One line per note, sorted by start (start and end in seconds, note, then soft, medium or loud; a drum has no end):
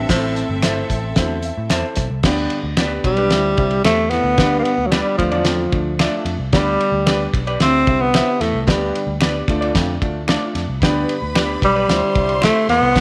0.00 2.20 C4 medium
0.00 2.20 A4 medium
0.00 2.20 E5 medium
0.09 0.43 A1 loud
0.09 0.86 A2 medium
0.09 0.47 A2 medium
0.09 0.41 C4 medium
0.09 0.41 E4 medium
0.09 0.41 A4 medium
0.09 0.41 C5 loud
0.09 kick loud
0.09 snare loud
0.09 closed hi-hat medium
0.36 closed hi-hat medium
0.49 0.83 G1 loud
0.62 0.95 C4 medium
0.62 0.95 E4 medium
0.62 0.77 A4 medium
0.62 0.95 A4 medium
0.62 0.77 C5 medium
0.62 0.95 C5 loud
0.62 0.77 E5 medium
0.62 finger snap loud
0.62 snare loud
0.62 closed hi-hat loud
0.90 1.12 A1 medium
0.90 kick medium
0.90 closed hi-hat medium
1.16 1.38 D2 medium
1.16 1.50 E2 loud
1.16 1.48 C4 medium
1.16 1.49 E4 medium
1.16 1.49 A4 medium
1.16 1.49 C5 loud
1.16 kick medium
1.16 snare loud
1.16 closed hi-hat medium
1.42 1.69 E5 medium
1.42 closed hi-hat medium
1.57 1.68 A2 medium
1.70 1.82 E2 loud
1.70 2.03 C4 medium
1.70 2.03 E4 medium
1.70 1.84 A4 medium
1.70 2.03 A4 medium
1.70 1.85 C5 medium
1.70 2.03 C5 medium
1.70 1.85 E5 medium
1.70 2.21 A5 medium
1.70 finger snap loud
1.70 snare loud
1.70 closed hi-hat medium
1.96 2.08 B1 medium
1.96 kick medium
1.96 snare soft
1.96 closed hi-hat medium
2.10 2.22 C2 medium
2.23 2.46 D2 loud
2.23 2.62 G2 medium
2.23 3.02 D3 medium
2.23 2.57 B3 loud
2.23 2.57 D4 loud
2.23 2.57 G4 loud
2.23 2.57 B4 loud
2.23 2.57 D5 loud
2.23 kick loud
2.23 snare loud
2.23 crash medium
2.50 ride medium
2.63 2.97 D2 medium
2.77 3.10 B3 medium
2.77 2.92 D4 medium
2.77 3.10 D4 medium
2.77 2.92 G4 medium
2.77 3.10 G4 medium
2.77 2.92 B4 medium
2.77 3.10 B4 medium
2.77 3.10 D5 medium
2.77 finger snap loud
2.77 snare loud
2.77 ride medium
3.04 3.30 B1 medium
3.04 3.81 G3 loud
3.04 kick medium
3.04 ride medium
3.17 3.29 D4 medium
3.17 3.29 G4 medium
3.17 3.29 B4 medium
3.17 ride soft
3.30 3.53 D2 loud
3.30 4.08 D3 medium
3.30 3.48 C4 medium
3.30 3.48 E4 medium
3.30 3.48 G4 medium
3.30 3.48 C5 medium
3.30 3.48 E5 medium
3.30 snare loud
3.30 ride medium
3.57 3.80 C2 medium
3.57 3.74 C4 medium
3.57 3.74 E4 medium
3.57 3.74 G4 medium
3.57 3.74 C5 medium
3.57 3.74 E5 medium
3.57 kick loud
3.57 ride medium
3.71 ride soft
3.84 4.18 E2 medium
3.84 4.11 A3 loud
3.84 4.17 C4 medium
3.84 4.17 E4 medium
3.84 3.99 G4 medium
3.84 4.17 G4 medium
3.84 3.99 C5 medium
3.84 4.17 C5 medium
3.84 4.17 E5 medium
3.84 4.00 E5 medium
3.84 finger snap loud
3.84 snare loud
3.84 ride medium
4.10 4.33 A2 medium
4.10 4.58 B3 loud
4.10 snare soft
4.10 ride medium
4.24 4.36 D2 medium
4.38 4.61 D2 loud
4.38 4.76 G2 medium
4.38 5.15 D3 medium
4.38 4.71 B3 loud
4.38 4.71 D4 loud
4.38 4.71 G4 medium
4.38 4.71 B4 medium
4.38 4.71 D5 loud
4.38 kick loud
4.38 snare loud
4.38 ride medium
4.59 4.65 A#3 medium
4.63 4.88 B3 loud
4.63 ride medium
4.78 5.01 D2 medium
4.86 4.92 F#3 medium
4.91 5.17 G3 medium
4.91 5.20 B3 medium
4.91 5.19 D4 medium
4.91 5.06 G4 medium
4.91 5.20 G4 medium
4.91 5.06 B4 medium
4.91 5.20 B4 medium
4.91 5.06 D5 medium
4.91 5.19 D5 medium
4.91 finger snap loud
4.91 snare loud
4.91 ride medium
5.17 5.32 D2 medium
5.17 5.96 D3 medium
5.17 6.22 F3 medium
5.17 5.62 A3 medium
5.17 5.63 D4 medium
5.17 5.63 F4 medium
5.17 5.62 A4 medium
5.17 5.63 D5 medium
5.17 kick medium
5.17 ride medium
5.32 5.66 E2 medium
5.32 5.44 F4 medium
5.32 5.44 A4 medium
5.32 5.43 D5 medium
5.32 ride soft
5.45 5.67 F2 medium
5.45 snare loud
5.45 ride medium
5.72 6.06 D2 medium
5.72 5.89 A3 medium
5.72 5.89 D4 medium
5.72 5.89 F4 medium
5.72 5.89 A4 medium
5.72 5.90 D5 medium
5.72 kick loud
5.72 ride medium
5.99 6.32 A3 medium
5.99 6.32 D4 medium
5.99 6.14 F4 medium
5.99 6.32 F4 medium
5.99 6.14 A4 medium
5.99 6.32 A4 medium
5.99 6.14 D5 medium
5.99 6.32 E5 loud
5.99 finger snap loud
5.99 snare loud
5.99 ride medium
6.25 6.37 F2 loud
6.25 ride medium
6.38 6.50 C2 loud
6.53 6.76 D2 loud
6.53 6.91 G2 medium
6.53 7.30 D3 medium
6.53 7.29 G3 loud
6.53 6.86 B3 loud
6.53 6.85 D4 medium
6.53 6.86 G4 loud
6.53 6.86 B4 medium
6.53 6.86 D5 loud
6.53 kick loud
6.53 snare loud
6.53 ride medium
6.81 ride medium
6.92 7.26 D2 loud
7.06 7.38 B3 medium
7.06 7.38 D4 medium
7.06 7.38 G4 medium
7.06 7.21 G4 medium
7.06 7.38 B4 medium
7.06 7.21 B4 loud
7.06 7.38 D5 medium
7.06 7.21 D5 medium
7.06 finger snap loud
7.06 snare loud
7.06 ride medium
7.34 7.56 B1 loud
7.34 kick loud
7.34 ride medium
7.47 7.59 G4 medium
7.47 7.58 B4 medium
7.47 7.58 D5 medium
7.47 ride soft
7.60 7.83 D2 loud
7.60 8.37 D3 medium
7.60 8.02 C4 loud
7.60 7.77 C4 medium
7.60 7.77 E4 medium
7.60 7.77 G4 medium
7.60 7.77 C5 medium
7.60 7.77 E5 medium
7.60 snare loud
7.60 ride medium
7.87 8.21 C2 medium
7.87 8.04 C4 medium
7.87 8.04 E4 medium
7.87 8.03 G4 medium
7.87 8.04 C5 medium
7.87 8.04 E5 medium
7.87 kick loud
7.87 ride medium
8.01 8.43 B3 loud
8.14 8.46 C4 medium
8.14 8.46 E4 medium
8.14 8.28 G4 medium
8.14 8.46 G4 medium
8.14 8.28 C5 medium
8.14 8.46 C5 medium
8.14 8.29 E5 loud
8.14 8.47 E5 medium
8.14 finger snap loud
8.14 snare loud
8.14 ride medium
8.41 8.52 E2 medium
8.41 8.62 A2 medium
8.41 8.61 A3 medium
8.41 snare soft
8.41 ride medium
8.54 8.65 C2 loud
8.61 8.70 A3 medium
8.67 8.90 D2 loud
8.67 9.05 G2 loud
8.67 9.44 D3 medium
8.67 9.22 G3 medium
8.67 8.99 B3 loud
8.67 8.99 D4 medium
8.67 8.99 G4 medium
8.67 9.00 B4 medium
8.67 9.00 D5 loud
8.67 kick loud
8.67 snare loud
8.67 ride medium
8.95 ride medium
9.07 9.41 D2 medium
9.21 9.48 B3 medium
9.21 9.47 D4 medium
9.21 9.35 G4 medium
9.21 9.48 G4 medium
9.21 9.35 B4 medium
9.21 9.48 B4 medium
9.21 9.35 D5 medium
9.21 9.47 D5 medium
9.21 finger snap loud
9.21 snare loud
9.21 ride medium
9.48 9.70 D2 loud
9.48 10.25 D3 medium
9.48 9.91 A3 medium
9.48 9.91 D4 medium
9.48 9.91 F4 medium
9.48 9.91 A4 medium
9.48 9.91 D5 loud
9.48 kick medium
9.48 ride medium
9.61 9.73 F4 medium
9.61 9.72 A4 medium
9.61 9.72 D5 medium
9.61 ride soft
9.74 9.96 F2 medium
9.74 9.97 F2 loud
9.74 kick medium
9.74 snare loud
9.74 ride medium
10.02 10.35 D2 medium
10.02 10.17 A3 medium
10.02 10.17 D4 medium
10.02 10.17 F4 medium
10.02 10.17 A4 medium
10.02 10.17 D5 medium
10.02 kick loud
10.02 ride soft
10.28 10.60 A3 medium
10.28 10.60 D4 medium
10.28 10.42 F4 medium
10.28 10.60 F4 medium
10.28 10.42 A4 medium
10.28 10.61 A4 medium
10.28 10.42 D5 medium
10.28 10.60 D5 medium
10.28 finger snap loud
10.28 snare loud
10.28 ride medium
10.55 10.66 F2 loud
10.55 snare soft
10.55 ride medium
10.68 10.79 C2 medium
10.82 11.04 D2 medium
10.82 11.20 G2 medium
10.82 11.59 D3 medium
10.82 11.14 B3 loud
10.82 11.14 D4 loud
10.82 11.14 G4 loud
10.82 11.87 B4 medium
10.82 11.14 B4 loud
10.82 11.14 D5 loud
10.82 11.87 B5 medium
10.82 kick loud
10.82 snare loud
10.82 ride medium
11.09 ride medium
11.22 11.55 D2 loud
11.35 11.67 B3 medium
11.35 11.67 D4 medium
11.35 11.49 G4 medium
11.35 11.67 G4 medium
11.35 11.67 B4 medium
11.35 11.49 B4 medium
11.35 11.67 D5 loud
11.35 11.50 D5 loud
11.35 finger snap loud
11.35 snare loud
11.35 ride medium
11.62 11.84 B1 medium
11.62 12.39 G3 loud
11.62 kick medium
11.62 ride medium
11.75 11.87 G4 soft
11.75 11.86 B4 medium
11.75 11.86 D5 medium
11.89 12.00 D2 medium
11.89 12.65 D3 medium
11.89 12.05 C4 medium
11.89 12.05 E4 medium
11.89 12.05 G4 medium
11.89 12.93 C5 medium
11.89 12.05 C5 medium
11.89 12.05 E5 medium
11.89 12.94 C6 loud
11.89 snare loud
11.89 ride medium
12.02 muted picked electric bass stroke soft
12.15 12.49 C2 medium
12.15 12.32 C4 medium
12.15 12.32 E4 medium
12.15 12.32 G4 medium
12.15 12.32 C5 medium
12.15 12.32 E5 medium
12.15 kick loud
12.15 ride medium
12.29 ride soft
12.42 12.68 A3 loud
12.42 12.74 C4 medium
12.42 12.56 E4 medium
12.42 12.74 E4 medium
12.42 12.56 G4 medium
12.42 12.74 G4 medium
12.42 12.56 C5 loud
12.42 12.74 C5 medium
12.42 12.74 E5 medium
12.42 finger snap medium
12.42 snare loud
12.42 ride medium
12.69 12.80 E2 medium
12.69 12.90 A2 medium
12.69 13.00 B3 loud
12.69 snare soft
12.69 ride medium
12.82 12.93 C2 medium
12.95 13.00 D2 loud
12.95 13.00 G2 medium
12.95 13.00 D3 medium
12.95 13.00 B3 loud
12.95 13.00 D4 medium
12.95 13.00 G4 medium
12.95 13.00 B4 medium
12.95 13.00 D5 loud
12.95 13.00 D5 medium
12.95 13.00 D6 loud
12.95 kick loud
12.95 snare loud
12.95 ride medium